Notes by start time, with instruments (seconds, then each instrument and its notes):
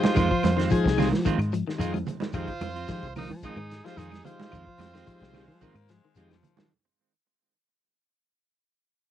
Already playing: clean electric guitar F3, transistor combo organ G#3 D#4 G4, tenor saxophone F4, trumpet C5
0.04 snare, closed hi-hat, high conga
0.15 fingered electric bass F2, clean electric guitar D#3 G#3 F4, muted clean electric guitar stroke, kick, closed hi-hat, claves, shekere
0.29 clean electric guitar F3, muted clean electric guitar stroke, kick
0.43 fingered electric bass F2, muted clean electric guitar stroke, snare, closed hi-hat, high conga, claves, shekere
0.57 clean electric guitar D#3 G#3 C4 F4, snare, closed hi-hat
0.70 fingered electric bass F3, transistor combo organ G#3 D#4 G#4, muted clean electric guitar stroke, kick, closed hi-hat, shekere
0.84 fingered electric bass C2, clean electric guitar F3, kick, snare
0.97 clean electric guitar D#3 G3 G#3 C4 F4, snare, open hi-hat, high conga, low conga, claves, shekere
1.11 fingered electric bass F3, muted clean electric guitar stroke, snare, high conga
1.25 clean electric guitar D#3 G#3 C4 F4, kick, closed hi-hat, shekere
1.38 fingered electric bass G#2, muted clean electric guitar stroke, closed hi-hat, claves
1.52 clean electric guitar F3, muted clean electric guitar stroke, closed hi-hat, shekere
1.67 clean electric guitar D#3, snare
1.78 fingered electric bass F2, clean electric guitar D#3 G#3 C4 F4, transistor combo organ G#3 D#4 F4, closed hi-hat, shekere
1.94 clean electric guitar F3, muted clean electric guitar stroke, closed hi-hat, high conga, claves
2.07 muted clean electric guitar stroke, closed hi-hat, low conga, shekere
2.20 clean electric guitar D#3, snare, closed hi-hat, high conga
2.33 fingered electric bass F2, clean electric guitar D#3 G#3 C4 F4, transistor combo organ G#3 D#4 G4, tenor saxophone F4, trumpet C5, kick, closed hi-hat, claves, shekere
2.48 muted clean electric guitar stroke, kick, closed hi-hat
2.61 fingered electric bass F2, clean electric guitar F3, muted clean electric guitar stroke, closed hi-hat, high conga, claves, shekere
2.76 clean electric guitar C4 F4, closed hi-hat
2.87 clean electric guitar D#3, fingered electric bass F3, transistor combo organ G#3 D#4 G4, muted clean electric guitar stroke, kick, snare, closed hi-hat, shekere
3.03 fingered electric bass C2, kick, closed hi-hat
3.15 clean electric guitar D#3 F3 G#3 C4 F4, tenor saxophone D#4, trumpet A#4, open hi-hat, high conga, low conga, claves, shekere
3.30 clean electric guitar F3, fingered electric bass F3, muted clean electric guitar stroke, high conga
3.42 clean electric guitar D#3 G#3 C4 F4, transistor combo organ G#3 D#4 A#4, tenor saxophone D#4, trumpet G#4, kick, closed hi-hat, shekere
3.56 fingered electric bass G#2, clean electric guitar D#3, muted clean electric guitar stroke, claves
3.70 muted clean electric guitar stroke, snare, closed hi-hat, shekere
3.84 clean electric guitar F3, transistor combo organ G#3 D#4 G4, tenor saxophone F4, trumpet C5, snare, closed hi-hat
3.97 fingered electric bass F2, clean electric guitar D#3 G#3 C4 F4, tenor saxophone D#4, trumpet G#4, closed hi-hat, shekere
4.12 snare, closed hi-hat, high conga, claves
4.24 clean electric guitar F3, transistor combo organ G#3 D#4 G4, tenor saxophone F4, trumpet C5, muted clean electric guitar stroke, closed hi-hat, low conga, shekere
4.40 snare, closed hi-hat, high conga
4.51 fingered electric bass F2, clean electric guitar D#3 G#3 C4 F4, kick, closed hi-hat, claves, shekere
4.66 clean electric guitar F3, muted clean electric guitar stroke, kick
4.78 fingered electric bass F2, baritone saxophone C4, muted clean electric guitar stroke, closed hi-hat, high conga, claves, shekere
4.82 snare
4.94 clean electric guitar D#3 G#3 C4 F4, baritone saxophone C4, snare, closed hi-hat
5.06 fingered electric bass F3, transistor combo organ G#3 D#4 G4, baritone saxophone C4, muted clean electric guitar stroke, kick, closed hi-hat, shekere
5.22 fingered electric bass C2, clean electric guitar F3, kick, snare
5.33 clean electric guitar D#3 G3 G#3 C4 F4, baritone saxophone G#3, snare, open hi-hat, high conga, low conga, claves, shekere
5.48 fingered electric bass F3, muted clean electric guitar stroke
5.61 clean electric guitar D#3 G#3 C4 F4, baritone saxophone A#3, kick, closed hi-hat, shekere
5.75 fingered electric bass G#2, closed hi-hat, claves
5.89 clean electric guitar F3, baritone saxophone G#3, muted clean electric guitar stroke, snare, closed hi-hat, shekere
6.05 clean electric guitar D#3
6.16 fingered electric bass F2, clean electric guitar D#3 G#3 C4 F4, transistor combo organ G#3 D#4 G4, baritone saxophone G#3, closed hi-hat, shekere
6.30 clean electric guitar F3, baritone saxophone F3, muted clean electric guitar stroke, snare, closed hi-hat, high conga, claves
6.43 muted clean electric guitar stroke, closed hi-hat, low conga, shekere
6.57 clean electric guitar D#3, snare, closed hi-hat, high conga